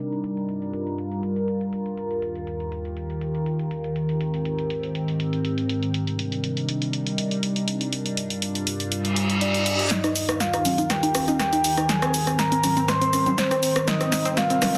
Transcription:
Already playing: ambient pad G3 D4 A#4
0.00 ambient pad G2 F4
0.12 closed hi-hat
0.24 closed hi-hat
0.37 closed hi-hat
0.49 closed hi-hat
0.62 closed hi-hat
0.73 closed hi-hat
0.87 closed hi-hat
0.98 closed hi-hat
1.11 closed hi-hat
1.23 closed hi-hat
1.36 closed hi-hat
1.48 closed hi-hat
1.61 closed hi-hat
1.73 closed hi-hat
1.86 closed hi-hat
1.97 ambient pad D#2 D#3 G4, closed hi-hat
2.11 closed hi-hat
2.22 closed hi-hat
2.35 closed hi-hat
2.47 closed hi-hat
2.60 closed hi-hat
2.72 closed hi-hat
2.85 closed hi-hat
2.97 closed hi-hat
3.10 closed hi-hat
3.21 closed hi-hat
3.35 closed hi-hat
3.46 closed hi-hat
3.59 closed hi-hat
3.71 closed hi-hat
3.84 closed hi-hat
3.96 ambient pad G#2 C4 G4, closed hi-hat
4.09 closed hi-hat
4.21 closed hi-hat
4.34 closed hi-hat
4.45 closed hi-hat
4.59 closed hi-hat
4.70 closed hi-hat
4.83 closed hi-hat
4.95 closed hi-hat
5.08 closed hi-hat
5.20 closed hi-hat
5.33 closed hi-hat
5.45 closed hi-hat
5.58 closed hi-hat
5.69 closed hi-hat
5.83 closed hi-hat
5.94 ambient pad C3 G3 D4 D#4, closed hi-hat
6.07 closed hi-hat
6.19 closed hi-hat
6.32 closed hi-hat
6.44 closed hi-hat
6.57 closed hi-hat
6.69 closed hi-hat
6.82 closed hi-hat
6.93 closed hi-hat
7.07 closed hi-hat
7.18 closed hi-hat
7.31 closed hi-hat
7.43 closed hi-hat
7.56 closed hi-hat
7.68 closed hi-hat
7.81 closed hi-hat
7.93 ambient pad G2 G3 F4, closed hi-hat
8.06 closed hi-hat
8.17 closed hi-hat
8.30 closed hi-hat
8.42 closed hi-hat
8.55 closed hi-hat
8.67 closed hi-hat
8.80 closed hi-hat
8.92 closed hi-hat, reverse cymbal
9.05 closed hi-hat
9.16 closed hi-hat
9.30 closed hi-hat
9.41 soft synth lead D5, closed hi-hat
9.54 closed hi-hat
9.66 closed hi-hat
9.79 closed hi-hat
9.91 ambient pad D#2 D#3 F4 G4 A#4, soft synth lead D#5, snare, closed hi-hat, low conga, shaker
10.04 synth pluck D#4, cross-stick, closed hi-hat, shaker
10.16 open hi-hat, shaker
10.29 synth pluck D#4, cross-stick, closed hi-hat, shaker
10.40 soft synth lead F5, snare, closed hi-hat, shaker
10.53 synth pluck D#4, cross-stick, closed hi-hat, shaker
10.65 open hi-hat, high conga, low conga, shaker
10.78 synth pluck D#4, closed hi-hat, shaker
10.90 soft synth lead G5, cross-stick, snare, closed hi-hat, shaker
11.03 synth pluck D#4, closed hi-hat, shaker
11.15 cross-stick, open hi-hat, high conga, shaker
11.28 synth pluck D#4, closed hi-hat, high conga, shaker
11.39 soft synth lead G5, cross-stick, snare, closed hi-hat, shaker
11.53 synth pluck D#4, closed hi-hat, shaker
11.64 open hi-hat, shaker
11.77 synth pluck D#4, cross-stick, closed hi-hat, shaker
11.89 ambient pad G#2 G3 C4, soft synth lead G#5, snare, closed hi-hat, low conga, shaker
12.02 synth pluck C4, cross-stick, closed hi-hat, shaker
12.14 open hi-hat, shaker
12.27 synth pluck C4, cross-stick, closed hi-hat, shaker
12.39 soft synth lead A#5, snare, closed hi-hat, shaker
12.52 synth pluck C4, closed hi-hat, shaker
12.64 cross-stick, open hi-hat, high conga, low conga, shaker
12.77 synth pluck C4, closed hi-hat, shaker
12.88 soft synth lead C6, cross-stick, snare, closed hi-hat, shaker
13.01 synth pluck C4, closed hi-hat, shaker
13.13 cross-stick, open hi-hat, high conga, shaker
13.26 synth pluck C4, closed hi-hat, high conga, low conga, shaker
13.38 soft synth lead C5, snare, closed hi-hat, shaker
13.51 synth pluck C4, cross-stick, closed hi-hat, shaker
13.63 open hi-hat, shaker
13.76 synth pluck C4, cross-stick, closed hi-hat, shaker
13.88 ambient pad C3 G3 C4 D#4 A#4, soft synth lead D#5, snare, closed hi-hat, low conga, shaker
14.01 synth pluck C4, cross-stick, closed hi-hat, shaker
14.12 snare, open hi-hat, shaker
14.25 synth pluck C4, closed hi-hat, shaker
14.37 soft synth lead F5, cross-stick, snare, closed hi-hat, shaker
14.50 synth pluck C4, closed hi-hat, shaker
14.62 cross-stick, snare, open hi-hat, high conga, low conga, shaker

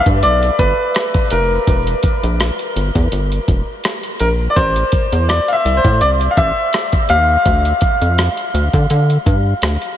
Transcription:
0.06 analog synth bass G2, kick, closed hi-hat
0.23 analog synth bass B1, grand piano D5, closed hi-hat
0.43 closed hi-hat
0.59 analog synth bass G1, grand piano B4, kick, closed hi-hat
0.95 cross-stick, closed hi-hat
1.14 kick, closed hi-hat
1.30 analog synth bass F1, grand piano A#4, closed hi-hat
1.67 analog synth bass E1, kick, closed hi-hat
1.87 closed hi-hat
2.03 kick, closed hi-hat
2.23 analog synth bass A#1, closed hi-hat
2.40 cross-stick, closed hi-hat
2.59 closed hi-hat
2.76 analog synth bass G1, closed hi-hat
2.95 analog synth bass E2, kick, closed hi-hat
3.12 analog synth bass G1, closed hi-hat
3.32 closed hi-hat
3.48 analog synth bass E1, kick, closed hi-hat
3.84 cross-stick, closed hi-hat
4.03 closed hi-hat
4.20 analog synth bass A#1, grand piano A#4, closed hi-hat
4.50 grand piano D5
4.56 analog synth bass A1, grand piano C5, kick, closed hi-hat
4.76 closed hi-hat
4.92 kick, closed hi-hat
5.12 analog synth bass E2, closed hi-hat
5.29 grand piano D5, cross-stick, closed hi-hat
5.48 grand piano F5, closed hi-hat
5.53 grand piano E5
5.65 analog synth bass C2, closed hi-hat
5.77 grand piano C5
5.84 analog synth bass A2, kick, closed hi-hat
6.01 analog synth bass C2, grand piano D5, closed hi-hat
6.21 closed hi-hat
6.31 grand piano F5
6.37 analog synth bass A1, grand piano E5, kick, closed hi-hat
6.73 cross-stick, closed hi-hat
6.92 kick, closed hi-hat
7.09 analog synth bass D#2, grand piano F5, closed hi-hat
7.46 analog synth bass D2, kick, closed hi-hat
7.65 closed hi-hat
7.81 kick, closed hi-hat
8.02 analog synth bass F2, closed hi-hat
8.18 cross-stick, closed hi-hat
8.37 closed hi-hat
8.54 analog synth bass D2, closed hi-hat
8.74 analog synth bass D3, kick, closed hi-hat
8.90 analog synth bass D3, closed hi-hat
9.10 closed hi-hat
9.26 analog synth bass G2, kick, closed hi-hat
9.62 analog synth bass D2, cross-stick, closed hi-hat
9.82 closed hi-hat

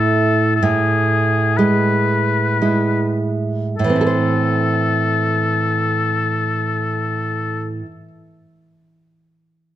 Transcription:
Already playing: nylon-string guitar A2 A3 E4, oboe A4
0.56 oboe A4
0.63 nylon-string guitar A2, oboe G#4
1.57 nylon-string guitar G#3, oboe B4
2.62 nylon-string guitar G#3 E4
3.77 nylon-string guitar A2, oboe A4
3.84 nylon-string guitar E3
3.90 nylon-string guitar C4
3.96 nylon-string guitar E4
4.01 nylon-string guitar A4
4.07 nylon-string guitar C5

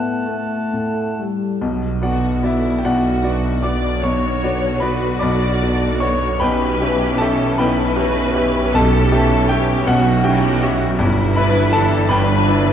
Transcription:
Already playing: grand piano A2 A3, bassoon A3, french horn section B3, clarinet D5, oboe F#5, flute A5
0.26 grand piano A3, french horn section A3
0.73 grand piano A2
1.19 french horn section G3, grand piano A3
1.61 grand piano B1 B2, double bass section B1, tuba B1
2.02 viola section D3 B3, grand piano B3 F#4 D5 F#5, violin section F#4
2.43 grand piano B3 E4 F#4 D5 E5, violin section E4
2.79 grand piano G5
2.83 tuba B1, double bass section B1, grand piano B1 B2 F#4 D5 F#5, violin section F#4
3.23 viola section D3 B3, grand piano B3 F#4 D5
3.62 grand piano B3 F#4 D5 D6, violin section D5
4.02 tuba B1, double bass section B1, grand piano B1 B2 C#5 C#6, cello section F#4, violin section C#5
4.41 viola section D3 B3, grand piano B3 F#4 D5
4.80 grand piano B3 F#4 B4 D5 B5, violin section B4
5.19 tuba B1, double bass section B1, grand piano B1 B2 D5 B5 D6, violin section D5
5.62 viola section D3 B3, grand piano B3 F#4 D5
6.00 grand piano B3 F#4 C#5 D5 C#6, violin section C#5
6.40 tuba B1, grand piano B1 B2 B4 G5 B5, double bass section B1, viola section E3 C#4, cello section G4, violin section B4
6.81 viola section E3 C#4, grand piano C#4 G4 E5
7.18 grand piano C#4 G4 A4 E5 A5, violin section A4
7.58 tuba B1, double bass section B1, grand piano B1 B2 B4 G5 B5, cello section E4, violin section B4
7.96 viola section E3 C#4, grand piano C#4 G4 E5, cello section F#4
8.35 grand piano C#4 G4 E5, cello section G4
8.74 grand piano B1 B2 A4 A5, double bass section B1, tuba B1, violin section A4
9.12 viola section E3 C#4, grand piano C#4 G4 E5
9.49 grand piano C#4 G4 E5 G5, violin section G4
9.87 grand piano B1 B2 F#4 F#5, double bass section B1, tuba B1, violin section F#4, cello section F#4
10.23 viola section E3 C#4, grand piano C#4 G4 E5 G5, violin section G4
10.62 grand piano C#4 G4 E5
10.99 grand piano G1 G2, tuba G1, double bass section G1, cello section E4
11.36 viola section E3 D4, grand piano D4 E4 B4 E5 B5, violin section B4
11.72 grand piano D4 E4 A4 E5 A5, violin section A4
12.09 double bass section G1, grand piano G1 G2 B4 G5 B5, tuba G1, cello section D4, violin section B4
12.47 viola section E3 D4, grand piano D4 E4 E5

